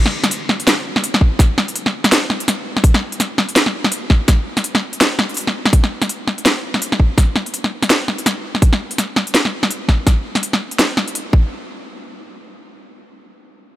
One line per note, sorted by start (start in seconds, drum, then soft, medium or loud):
0.06 snare medium
0.24 snare medium
0.24 closed hi-hat soft
0.31 closed hi-hat medium
0.49 snare medium
0.60 closed hi-hat soft
0.67 snare loud
0.67 snare medium
0.67 closed hi-hat medium
0.96 snare medium
1.04 closed hi-hat medium
1.14 snare medium
1.21 kick medium
1.39 kick loud
1.39 snare medium
1.39 closed hi-hat medium
1.58 snare medium
1.68 closed hi-hat soft
1.76 closed hi-hat medium
1.86 snare medium
2.04 snare medium
2.04 closed hi-hat soft
2.12 snare loud
2.12 closed hi-hat medium
2.30 snare medium
2.40 closed hi-hat soft
2.48 snare medium
2.48 closed hi-hat medium
2.77 snare medium
2.84 kick loud
2.84 closed hi-hat medium
2.94 snare medium
3.12 closed hi-hat soft
3.20 snare medium
3.20 closed hi-hat medium
3.38 snare medium
3.49 closed hi-hat soft
3.56 snare loud
3.56 closed hi-hat medium
3.66 snare soft
3.84 snare medium
3.92 closed hi-hat medium
4.10 kick medium
4.10 snare soft
4.28 kick loud
4.28 snare medium
4.28 closed hi-hat medium
4.57 snare soft
4.57 closed hi-hat soft
4.64 closed hi-hat medium
4.75 snare medium
4.93 closed hi-hat soft
5.01 snare loud
5.01 snare soft
5.01 closed hi-hat medium
5.19 snare medium
5.29 closed hi-hat soft
5.34 closed hi-hat soft
5.37 closed hi-hat medium
5.40 closed hi-hat soft
5.47 snare soft
5.65 snare medium
5.73 kick loud
5.73 closed hi-hat medium
5.84 snare soft
6.02 snare medium
6.02 closed hi-hat soft
6.09 closed hi-hat medium
6.27 snare soft
6.38 closed hi-hat soft
6.46 snare loud
6.46 snare medium
6.46 closed hi-hat medium
6.74 snare soft
6.82 closed hi-hat medium
6.92 snare medium
7.00 kick medium
7.18 kick loud
7.18 snare soft
7.18 closed hi-hat medium
7.36 snare medium
7.46 closed hi-hat soft
7.54 closed hi-hat medium
7.64 snare soft
7.83 snare medium
7.83 closed hi-hat soft
7.90 snare loud
7.90 closed hi-hat medium
8.08 snare soft
8.18 closed hi-hat soft
8.26 snare medium
8.26 closed hi-hat medium
8.55 snare soft
8.62 kick loud
8.62 closed hi-hat medium
8.73 snare medium
8.91 closed hi-hat soft
8.98 snare soft
8.98 closed hi-hat medium
9.16 snare medium
9.27 closed hi-hat soft
9.35 snare loud
9.35 closed hi-hat medium
9.45 snare soft
9.63 snare medium
9.71 closed hi-hat medium
9.89 kick medium
9.89 snare medium
10.07 kick loud
10.07 snare medium
10.07 closed hi-hat medium
10.35 snare medium
10.35 closed hi-hat soft
10.43 closed hi-hat medium
10.53 snare medium
10.71 closed hi-hat soft
10.79 snare loud
10.79 snare medium
10.79 closed hi-hat medium
10.97 snare medium
11.08 closed hi-hat soft
11.15 closed hi-hat medium
11.33 kick loud